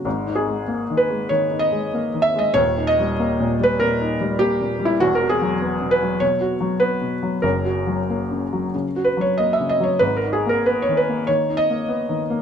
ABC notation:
X:1
M:4/4
L:1/16
Q:1/4=96
K:G#m
V:1 name="Felt piano"
z2 G4 B2 c2 d4 e d | c2 d4- d B A4 =G3 E | F A G4 B2 c4 B4 | A8- A2 B c d e d c |
B A G A B c B2 c2 d6 |]
V:2 name="Felt piano" clef=bass
(3[G,,,G,,]2 D2 G,2 (3A,2 D,2 G,2 (3D,2 D2 G,2 (3A,2 D,2 G,2 | (3[D,,,D,,]2 D2 =G,2 (3A,2 A,,2 G,2 (3A,,2 D2 G,2 (3A,2 A,,2 G,2 | (3[E,,,E,,]2 F2 F,2 (3B,2 B,,2 F,2 (3B,,2 F2 F,2 (3B,2 B,,2 F,2 | (3[F,,,F,,]2 F2 F,2 (3A,2 C,2 F,2 (3C,2 F2 F,2 (3A,2 C,2 F,2 |
(3[G,,,G,,]2 D2 A,2 (3B,2 D,2 A,2 (3D,2 D2 A,2 (3B,2 D,2 A,2 |]